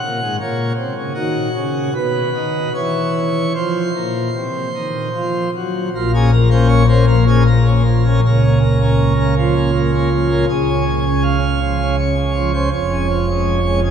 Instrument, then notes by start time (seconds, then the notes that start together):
pipe organ
Already playing: F#5
0.04 A#2
0.22 G#2
0.40 A#2 C#5
0.77 C3
0.96 C#3
1.14 D#3 F#4
1.55 C#3
1.95 B2 B4
2.35 D#3
2.74 E3 C#5
3.55 F3 C5
3.95 A#2
4.35 C3
4.75 D#3
5.15 F3
5.56 F#3
5.95 A#1 A#2 F4
6.14 A#3 C#4 G#4
6.32 A#3 A#4
6.50 A#3 C#4 C5
6.69 C#5
6.88 A#3 C#4 C5
7.07 F3 A#4
7.27 A#3 C#4 G#4
7.47 A#3 A#4
7.66 A#3 C#4
7.85 F3
8.04 A#3 C#4
8.25 C#2 C#3 A#4
8.43 A#3 C#4
8.63 A#3
8.82 A#3 C#4
9.19 A#3 C#4
9.38 F3 F4
9.55 A#3 C#4
9.75 A#3
9.94 A#3 C#4
10.12 F3
10.30 A#3 C#4
10.49 C#2 C#3 G#4
10.69 C#4
10.88 C#4
11.06 C#4
11.23 F5
11.44 C#4
11.62 F3
11.81 C#4
11.98 C#4 C#5
12.16 C#4
12.34 F3
12.54 C#4 C5
12.73 F1 F2 C#5
12.91 G#3 C#4
13.10 F3
13.29 G#3 C#4
13.66 G#3 C#4
13.85 C#3 G#4